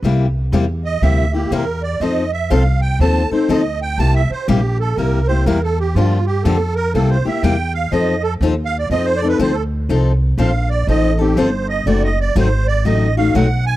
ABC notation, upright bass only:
X:1
M:4/4
L:1/8
Q:"Swing" 1/4=122
K:F
V:1 name="Upright bass" clef=bass
C,,2 E,,2 D,,2 E,,2 | F,,2 C,,2 _E,, z D,,2 | C,, z B,,,2 C,,2 E,,2 | G,,2 F,,2 C,, z E,,2 |
F,,2 _E,,2 F,,2 D,,2 | C,,2 B,,,2 A,,,2 G,,,2 | ^F,,,2 _A,,,2 =A,,,2 =B,,,2 |]